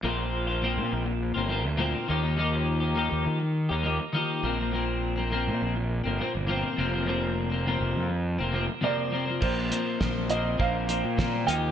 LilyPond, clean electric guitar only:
\new Staff \with { instrumentName = "Clean electric guitar" } { \time 4/4 \key f \mixolydian \tempo 4 = 102 <bes, f bes c' f'>8. <bes c' f'>16 <bes, f bes c' f'>4~ <bes, f bes c' f'>16 <bes c' f'>16 <f bes c' f'>8 <bes, f bes c' f'>8 <ees f bes ees' g'>16 <bes ees' g'>16 | <ees f bes ees' g'>8. <bes ees' g'>16 <ees f bes ees' g'>4~ <ees f bes ees' g'>16 <bes ees' g'>16 <f bes ees' g'>8 <ees f bes ees' g'>8 <bes, f bes c'>16 <f bes c'>16 | <bes, f bes c'>8. <f bes c'>16 <bes, f bes c'>4~ <bes, f bes c'>16 <f bes c'>16 <bes, f bes c'>8 <bes, f bes c'>8 <f, c f bes c'>16 <f bes c'>16 | <f, c f bes c'>8. <f bes c'>16 <f, c f bes c'>4~ <f, c f bes c'>16 <f bes c'>16 <c f bes c'>8 <f, c f bes c'>8 <c f bes c'>16 <f bes c'>16 |
<bes, f bes c'>8 <bes, f bes c'>8 <bes, f bes c'>8 <bes, f bes c'>8 <bes, f bes c'>8 <bes, f bes c'>8 <bes, f bes c'>8 <ees f bes ees' g'>8 | }